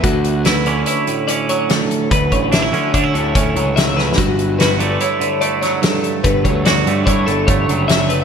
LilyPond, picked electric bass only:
\new Staff \with { instrumentName = "Picked electric bass" } { \clef bass \time 5/4 \key d \major \tempo 4 = 145 d,2 r2. | d,8 a,,4 d8 d8 d,8 d,8 cis,4. | g,,2 r2. | g,,8 d,4 g,8 g,8 g,,8 g,,8 fis,,4. | }